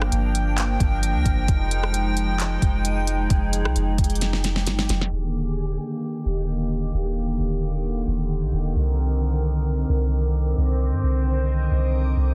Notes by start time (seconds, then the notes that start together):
Already playing: G1 F3 A#3 D4 A#4 G5 F6
0.02 cross-stick
0.12 G1, closed hi-hat
0.35 closed hi-hat
0.58 clap, closed hi-hat
0.80 G1, kick, closed hi-hat
1.03 closed hi-hat
1.14 D2
1.25 G1, kick, closed hi-hat
1.48 F1 G#3 D#4 G#4 D#6, kick, closed hi-hat
1.71 closed hi-hat
1.83 cross-stick
1.94 closed hi-hat
2.17 closed hi-hat
2.40 clap, closed hi-hat
2.62 F1, kick, closed hi-hat
2.85 closed hi-hat
3.07 closed hi-hat
3.30 F1 D6, kick, closed hi-hat
3.53 closed hi-hat
3.64 C2, cross-stick
3.76 F1, closed hi-hat
3.98 F1, kick, closed hi-hat
4.04 closed hi-hat
4.10 closed hi-hat
4.15 closed hi-hat
4.21 snare, closed hi-hat
4.33 snare
4.44 snare, closed hi-hat
4.56 snare
4.67 G1, snare, closed hi-hat
4.79 snare
4.89 F1, snare, closed hi-hat
5.01 snare
5.12 D#1 D3 D#3 A#3 G4 D#5 D6
6.26 D#1
6.94 D#1
7.39 D#1
8.08 D#1
8.42 A#1
8.53 D#1
8.76 C2 C4 A#4 D#5 D6
9.89 C2
10.57 C2 C5
10.92 G2
11.03 C2
11.71 C2
12.17 C2